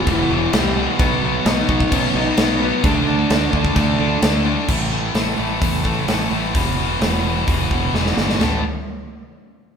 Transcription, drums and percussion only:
0, 0, Header, 1, 2, 480
1, 0, Start_track
1, 0, Tempo, 463320
1, 1028, Time_signature, 4, 2, 24, 8
1, 10119, End_track
2, 0, Start_track
2, 0, Title_t, "Drums"
2, 71, Note_on_c, 9, 49, 76
2, 72, Note_on_c, 9, 36, 108
2, 175, Note_off_c, 9, 36, 0
2, 175, Note_off_c, 9, 49, 0
2, 551, Note_on_c, 9, 49, 74
2, 556, Note_on_c, 9, 38, 127
2, 654, Note_off_c, 9, 49, 0
2, 659, Note_off_c, 9, 38, 0
2, 1031, Note_on_c, 9, 36, 118
2, 1032, Note_on_c, 9, 49, 67
2, 1134, Note_off_c, 9, 36, 0
2, 1136, Note_off_c, 9, 49, 0
2, 1510, Note_on_c, 9, 49, 69
2, 1515, Note_on_c, 9, 38, 115
2, 1613, Note_off_c, 9, 49, 0
2, 1619, Note_off_c, 9, 38, 0
2, 1749, Note_on_c, 9, 36, 87
2, 1852, Note_off_c, 9, 36, 0
2, 1869, Note_on_c, 9, 36, 93
2, 1973, Note_off_c, 9, 36, 0
2, 1988, Note_on_c, 9, 36, 102
2, 1989, Note_on_c, 9, 49, 78
2, 2092, Note_off_c, 9, 36, 0
2, 2093, Note_off_c, 9, 49, 0
2, 2459, Note_on_c, 9, 49, 75
2, 2464, Note_on_c, 9, 38, 123
2, 2562, Note_off_c, 9, 49, 0
2, 2568, Note_off_c, 9, 38, 0
2, 2941, Note_on_c, 9, 49, 66
2, 2942, Note_on_c, 9, 36, 112
2, 3044, Note_off_c, 9, 49, 0
2, 3045, Note_off_c, 9, 36, 0
2, 3421, Note_on_c, 9, 49, 60
2, 3426, Note_on_c, 9, 38, 115
2, 3525, Note_off_c, 9, 49, 0
2, 3530, Note_off_c, 9, 38, 0
2, 3659, Note_on_c, 9, 36, 77
2, 3762, Note_off_c, 9, 36, 0
2, 3777, Note_on_c, 9, 36, 91
2, 3881, Note_off_c, 9, 36, 0
2, 3895, Note_on_c, 9, 49, 72
2, 3896, Note_on_c, 9, 36, 105
2, 3999, Note_off_c, 9, 49, 0
2, 4000, Note_off_c, 9, 36, 0
2, 4375, Note_on_c, 9, 49, 77
2, 4380, Note_on_c, 9, 38, 127
2, 4479, Note_off_c, 9, 49, 0
2, 4484, Note_off_c, 9, 38, 0
2, 4853, Note_on_c, 9, 57, 99
2, 4855, Note_on_c, 9, 36, 107
2, 4957, Note_off_c, 9, 57, 0
2, 4958, Note_off_c, 9, 36, 0
2, 5333, Note_on_c, 9, 46, 51
2, 5338, Note_on_c, 9, 38, 102
2, 5436, Note_off_c, 9, 46, 0
2, 5442, Note_off_c, 9, 38, 0
2, 5819, Note_on_c, 9, 36, 106
2, 5821, Note_on_c, 9, 46, 57
2, 5923, Note_off_c, 9, 36, 0
2, 5925, Note_off_c, 9, 46, 0
2, 6061, Note_on_c, 9, 36, 79
2, 6165, Note_off_c, 9, 36, 0
2, 6300, Note_on_c, 9, 46, 51
2, 6305, Note_on_c, 9, 38, 108
2, 6404, Note_off_c, 9, 46, 0
2, 6409, Note_off_c, 9, 38, 0
2, 6782, Note_on_c, 9, 46, 57
2, 6785, Note_on_c, 9, 36, 107
2, 6886, Note_off_c, 9, 46, 0
2, 6888, Note_off_c, 9, 36, 0
2, 7267, Note_on_c, 9, 46, 54
2, 7273, Note_on_c, 9, 38, 103
2, 7371, Note_off_c, 9, 46, 0
2, 7376, Note_off_c, 9, 38, 0
2, 7746, Note_on_c, 9, 46, 61
2, 7747, Note_on_c, 9, 36, 110
2, 7850, Note_off_c, 9, 46, 0
2, 7851, Note_off_c, 9, 36, 0
2, 7988, Note_on_c, 9, 36, 81
2, 8091, Note_off_c, 9, 36, 0
2, 8232, Note_on_c, 9, 38, 65
2, 8335, Note_off_c, 9, 38, 0
2, 8352, Note_on_c, 9, 38, 71
2, 8456, Note_off_c, 9, 38, 0
2, 8470, Note_on_c, 9, 38, 98
2, 8573, Note_off_c, 9, 38, 0
2, 8594, Note_on_c, 9, 38, 86
2, 8698, Note_off_c, 9, 38, 0
2, 8713, Note_on_c, 9, 43, 92
2, 8713, Note_on_c, 9, 49, 76
2, 8718, Note_on_c, 9, 38, 96
2, 8817, Note_off_c, 9, 43, 0
2, 8817, Note_off_c, 9, 49, 0
2, 8822, Note_off_c, 9, 38, 0
2, 10119, End_track
0, 0, End_of_file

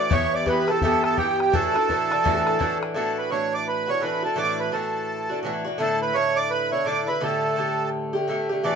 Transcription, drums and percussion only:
0, 0, Header, 1, 2, 480
1, 0, Start_track
1, 0, Key_signature, 2, "major"
1, 0, Tempo, 355030
1, 154, Time_signature, 4, 2, 24, 8
1, 11835, End_track
2, 0, Start_track
2, 0, Title_t, "Bodhran"
2, 146, Note_on_c, 9, 64, 98
2, 281, Note_off_c, 9, 64, 0
2, 627, Note_on_c, 9, 64, 85
2, 762, Note_off_c, 9, 64, 0
2, 918, Note_on_c, 9, 64, 62
2, 1053, Note_off_c, 9, 64, 0
2, 1104, Note_on_c, 9, 64, 87
2, 1239, Note_off_c, 9, 64, 0
2, 1404, Note_on_c, 9, 64, 63
2, 1539, Note_off_c, 9, 64, 0
2, 1590, Note_on_c, 9, 64, 81
2, 1725, Note_off_c, 9, 64, 0
2, 1896, Note_on_c, 9, 64, 57
2, 2031, Note_off_c, 9, 64, 0
2, 2075, Note_on_c, 9, 64, 79
2, 2210, Note_off_c, 9, 64, 0
2, 2376, Note_on_c, 9, 64, 55
2, 2511, Note_off_c, 9, 64, 0
2, 2564, Note_on_c, 9, 64, 77
2, 2699, Note_off_c, 9, 64, 0
2, 2862, Note_on_c, 9, 64, 56
2, 2997, Note_off_c, 9, 64, 0
2, 3051, Note_on_c, 9, 64, 70
2, 3186, Note_off_c, 9, 64, 0
2, 3337, Note_on_c, 9, 64, 61
2, 3472, Note_off_c, 9, 64, 0
2, 3523, Note_on_c, 9, 64, 81
2, 3658, Note_off_c, 9, 64, 0
2, 3821, Note_on_c, 9, 64, 60
2, 3957, Note_off_c, 9, 64, 0
2, 11835, End_track
0, 0, End_of_file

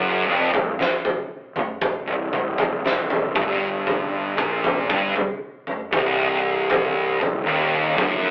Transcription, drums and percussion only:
0, 0, Header, 1, 2, 480
1, 0, Start_track
1, 0, Key_signature, -3, "minor"
1, 0, Tempo, 1027749
1, 850, Time_signature, 4, 2, 24, 8
1, 3879, End_track
2, 0, Start_track
2, 0, Title_t, "Drums"
2, 251, Note_on_c, 9, 43, 85
2, 251, Note_on_c, 9, 47, 85
2, 297, Note_off_c, 9, 43, 0
2, 297, Note_off_c, 9, 47, 0
2, 378, Note_on_c, 9, 38, 85
2, 425, Note_off_c, 9, 38, 0
2, 490, Note_on_c, 9, 43, 85
2, 537, Note_off_c, 9, 43, 0
2, 728, Note_on_c, 9, 47, 86
2, 775, Note_off_c, 9, 47, 0
2, 847, Note_on_c, 9, 43, 85
2, 849, Note_on_c, 9, 36, 102
2, 894, Note_off_c, 9, 43, 0
2, 895, Note_off_c, 9, 36, 0
2, 1087, Note_on_c, 9, 47, 76
2, 1134, Note_off_c, 9, 47, 0
2, 1206, Note_on_c, 9, 43, 94
2, 1253, Note_off_c, 9, 43, 0
2, 1334, Note_on_c, 9, 38, 81
2, 1381, Note_off_c, 9, 38, 0
2, 1449, Note_on_c, 9, 43, 84
2, 1496, Note_off_c, 9, 43, 0
2, 1568, Note_on_c, 9, 36, 104
2, 1568, Note_on_c, 9, 47, 77
2, 1614, Note_off_c, 9, 36, 0
2, 1615, Note_off_c, 9, 47, 0
2, 1807, Note_on_c, 9, 43, 86
2, 1854, Note_off_c, 9, 43, 0
2, 2047, Note_on_c, 9, 36, 102
2, 2093, Note_off_c, 9, 36, 0
2, 2168, Note_on_c, 9, 43, 90
2, 2168, Note_on_c, 9, 47, 86
2, 2215, Note_off_c, 9, 43, 0
2, 2215, Note_off_c, 9, 47, 0
2, 2288, Note_on_c, 9, 36, 105
2, 2335, Note_off_c, 9, 36, 0
2, 2409, Note_on_c, 9, 43, 87
2, 2455, Note_off_c, 9, 43, 0
2, 2648, Note_on_c, 9, 47, 78
2, 2695, Note_off_c, 9, 47, 0
2, 2768, Note_on_c, 9, 36, 101
2, 2768, Note_on_c, 9, 43, 90
2, 2815, Note_off_c, 9, 36, 0
2, 2815, Note_off_c, 9, 43, 0
2, 3129, Note_on_c, 9, 43, 90
2, 3175, Note_off_c, 9, 43, 0
2, 3368, Note_on_c, 9, 43, 86
2, 3415, Note_off_c, 9, 43, 0
2, 3727, Note_on_c, 9, 43, 90
2, 3729, Note_on_c, 9, 36, 98
2, 3774, Note_off_c, 9, 43, 0
2, 3775, Note_off_c, 9, 36, 0
2, 3879, End_track
0, 0, End_of_file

